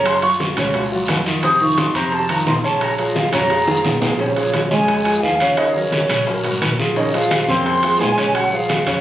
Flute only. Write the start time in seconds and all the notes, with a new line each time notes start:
0.06 C6
0.23 C#6
1.44 D#6
1.62 C#6
1.79 C6
1.95 A#5
2.14 A5
2.31 A#5
2.48 C6
2.64 A5
2.82 A#5
2.99 C#5
3.16 F5
3.33 A#5
4.20 C5
4.36 C#5
4.71 G#5
5.22 F5
5.57 D#5
5.75 C#5
6.96 D#5
7.13 F5
7.49 C6
8.01 G#5
8.35 F#5
8.53 F5